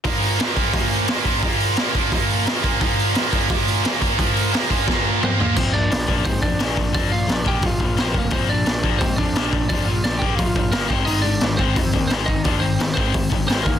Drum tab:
CC |--------|--------|--------|--------|
HH |oooooooo|oooooooo|oooooooo|oooo----|
SD |--o---o-|--o---o-|--o---o-|--o-o---|
T2 |--------|--------|--------|------o-|
FT |--------|--------|--------|-------o|
BD |o--oo--o|o--oo--o|o--oo--o|o--oo---|

CC |x-------|--------|--------|--------|
HH |--o-o-o-|o-o-o-o-|o-o-o-o-|o-o-o-o-|
SD |--o---o-|--o---o-|--o---o-|--o---o-|
T2 |--------|--------|--------|--------|
FT |--------|--------|--------|--------|
BD |o--ooo-o|o--ooo-o|o--ooo-o|o--ooo-o|

CC |--------|--------|
HH |o-o-o-o-|o-o-o-o-|
SD |--o---o-|--o---o-|
T2 |--------|--------|
FT |--------|--------|
BD |---ooo-o|o--ooo-o|